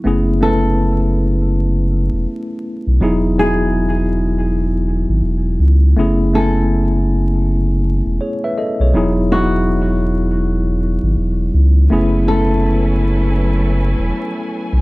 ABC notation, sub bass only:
X:1
M:4/4
L:1/16
Q:"Swing 16ths" 1/4=81
K:F#dor
V:1 name="Sub bass" clef=bass
F,,,8- F,,,3 E,,, z3 B,,, | E,,,8- E,,,3 G,,, E,,,2 C,,2 | F,,,8- F,,,3 E,,, z3 B,,, | E,,,8- E,,,3 G,,, E,,,2 C,,2 |
F,,,8- F,,,3 E,,, z3 B,,, |]